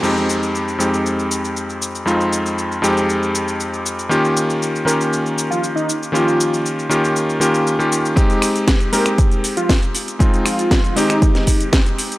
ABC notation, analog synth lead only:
X:1
M:4/4
L:1/16
Q:1/4=118
K:Fm
V:1 name="Analog synth lead"
z16 | z16 | z6 B z4 F z E z2 | F4 z12 |
z6 B z4 F z4 | z2 F4 E6 z4 |]